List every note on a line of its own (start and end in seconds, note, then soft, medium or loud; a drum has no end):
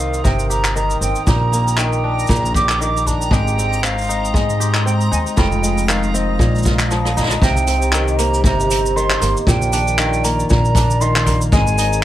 0.00 0.20 C2 medium
0.00 0.75 D#3 medium
0.00 1.40 A#3 medium
0.00 1.01 C4 medium
0.00 0.49 G4 medium
0.00 3.28 A#4 medium
0.00 0.24 F5 medium
0.00 5.33 G5 medium
0.00 7.43 A#5 medium
0.00 1.23 C6 medium
0.00 3.28 D#6 medium
0.00 cabasa medium
0.14 cabasa soft
0.24 0.97 G1 medium
0.24 0.81 C3 medium
0.24 0.48 G5 medium
0.24 kick loud
0.24 cabasa soft
0.39 cabasa soft
0.50 1.27 G4 medium
0.50 0.74 A#5 loud
0.50 cabasa medium
0.65 clap medium
0.65 cabasa soft
0.75 1.78 D#3 medium
0.75 1.00 A#5 medium
0.75 cabasa medium
0.90 cabasa soft
1.01 1.12 G1 medium
1.01 2.81 C4 medium
1.01 1.25 G5 medium
1.01 cabasa medium
1.15 cabasa soft
1.27 2.25 A#1 medium
1.27 1.83 A#2 medium
1.27 2.55 G4 medium
1.27 1.79 A#5 medium
1.27 3.30 D6 medium
1.27 kick loud
1.27 cabasa medium
1.52 3.45 A#3 medium
1.52 cabasa medium
1.68 cabasa soft
1.78 2.80 D#3 medium
1.78 2.31 G5 medium
1.78 clap medium
1.78 cabasa medium
1.93 cabasa soft
2.04 3.06 D4 medium
2.19 cabasa soft
2.27 3.28 A#1 medium
2.27 2.86 A#2 medium
2.27 2.55 A#5 loud
2.27 kick loud
2.27 cabasa soft
2.30 cabasa medium
2.45 cabasa soft
2.54 3.32 G4 medium
2.54 2.79 D6 loud
2.54 kick loud
2.54 cabasa medium
2.69 clap medium
2.69 cabasa soft
2.81 5.15 D#3 medium
2.81 3.08 D6 medium
2.81 cabasa medium
2.97 cabasa soft
3.06 4.15 D4 medium
3.06 3.33 A#5 medium
3.06 kick soft
3.06 cabasa medium
3.22 cabasa medium
3.31 4.30 G#1 medium
3.31 4.34 G#3 medium
3.31 7.39 G#3 medium
3.31 4.60 G4 medium
3.31 3.84 G5 medium
3.31 5.35 C6 medium
3.31 7.39 D#6 medium
3.31 kick loud
3.31 cabasa medium
3.48 cabasa soft
3.58 3.83 C4 medium
3.58 cabasa medium
3.73 cabasa soft
3.83 4.85 C4 medium
3.83 4.36 F5 medium
3.83 clap medium
3.83 cabasa medium
3.98 cabasa soft
4.01 cabasa soft
4.04 cabasa soft
4.07 5.11 D#4 medium
4.07 cabasa soft
4.10 cabasa medium
4.25 cabasa soft
4.34 5.07 G#2 medium
4.34 5.62 G#3 medium
4.34 4.85 D#5 medium
4.34 kick loud
4.34 cabasa medium
4.50 cabasa soft
4.60 5.68 G4 medium
4.60 cabasa medium
4.75 clap medium
4.75 cabasa soft
4.86 6.13 C4 medium
4.86 4.92 G5 medium
4.86 cabasa medium
5.01 cabasa soft
5.11 5.23 D#2 medium
5.11 6.74 D#4 medium
5.11 5.17 G#5 medium
5.11 cabasa medium
5.27 cabasa soft
5.37 6.36 F1 medium
5.37 6.45 F2 medium
5.37 6.65 F4 medium
5.37 6.39 F5 medium
5.37 5.85 G5 medium
5.37 6.39 C6 medium
5.37 kick loud
5.37 cabasa medium
5.52 cabasa soft
5.62 5.93 G#3 medium
5.62 cabasa medium
5.78 cabasa medium
5.88 6.71 D#3 medium
5.88 6.16 F5 medium
5.88 clap medium
5.88 cabasa medium
6.03 cabasa soft
6.14 7.67 C4 medium
6.14 6.91 D#5 medium
6.14 cabasa medium
6.39 7.38 A#1 medium
6.39 7.47 A#2 medium
6.39 7.41 F5 medium
6.39 7.41 A#5 medium
6.39 kick loud
6.39 cabasa medium
6.55 cabasa soft
6.58 cabasa soft
6.63 8.17 F4 medium
6.63 kick loud
6.63 cabasa soft
6.66 cabasa medium
6.79 clap medium
6.79 cabasa soft
6.91 7.47 F3 medium
6.91 cross-stick medium
6.91 cabasa medium
7.05 cross-stick medium
7.05 cabasa soft
7.17 8.79 D#4 medium
7.17 kick medium
7.17 cross-stick soft
7.17 cabasa medium
7.20 cross-stick soft
7.23 cross-stick medium
7.26 cross-stick medium
7.28 cross-stick medium
7.30 cross-stick medium
7.30 cabasa soft
7.42 8.40 C2 loud
7.42 7.98 C3 medium
7.42 9.46 G4 medium
7.42 9.46 C5 medium
7.42 9.45 D#5 medium
7.42 8.15 G5 loud
7.42 9.46 A#5 medium
7.42 kick loud
7.42 cabasa medium
7.57 cabasa soft
7.67 8.70 C4 medium
7.67 closed hi-hat medium
7.67 cabasa medium
7.82 cabasa soft
7.93 8.96 D#3 medium
7.93 clap medium
7.93 cabasa medium
8.08 cabasa soft
8.18 9.21 A#3 medium
8.18 8.43 A#5 loud
8.18 closed hi-hat loud
8.18 cabasa medium
8.34 cabasa medium
8.44 9.17 G1 medium
8.44 9.01 C3 medium
8.44 8.98 A#5 loud
8.44 kick loud
8.44 cabasa medium
8.60 cabasa soft
8.70 10.50 C4 medium
8.70 closed hi-hat medium
8.70 cabasa medium
8.86 cabasa soft
8.96 9.79 D#3 medium
8.96 9.36 C6 loud
8.96 cabasa medium
9.10 clap medium
9.10 cabasa soft
9.21 9.33 G1 medium
9.21 10.24 A#3 medium
9.21 closed hi-hat medium
9.21 cabasa medium
9.37 cabasa soft
9.47 10.46 A#1 loud
9.47 10.04 A#2 medium
9.47 12.04 D#3 medium
9.47 11.51 A#4 medium
9.47 11.51 D5 medium
9.47 10.26 G5 loud
9.47 12.04 A#5 loud
9.47 kick loud
9.47 cabasa medium
9.62 cabasa soft
9.73 10.75 D4 medium
9.73 closed hi-hat medium
9.73 cabasa loud
9.87 cabasa soft
9.98 11.01 D#3 medium
9.98 clap medium
9.98 cabasa medium
10.13 cabasa soft
10.24 11.27 A#3 medium
10.24 10.49 A#5 medium
10.24 closed hi-hat medium
10.24 cabasa medium
10.40 cabasa medium
10.49 11.49 A#1 loud
10.49 11.06 A#2 medium
10.49 11.02 A#5 loud
10.49 kick loud
10.49 cabasa medium
10.65 cabasa soft
10.75 11.84 D4 medium
10.75 kick loud
10.75 closed hi-hat medium
10.75 cabasa medium
10.90 cabasa soft
11.01 12.04 D#3 medium
11.01 11.41 C6 loud
11.01 cabasa medium
11.16 clap medium
11.16 cabasa soft
11.26 12.04 A#3 medium
11.26 kick medium
11.26 closed hi-hat medium
11.26 cabasa medium
11.41 cabasa soft
11.52 12.04 G#1 medium
11.52 12.04 G#3 medium
11.52 12.04 G#4 medium
11.52 12.04 C5 medium
11.52 12.00 G#5 medium
11.52 kick loud
11.52 cabasa medium
11.67 cabasa soft
11.78 12.04 D#4 medium
11.78 closed hi-hat loud
11.78 cabasa medium
11.93 cabasa medium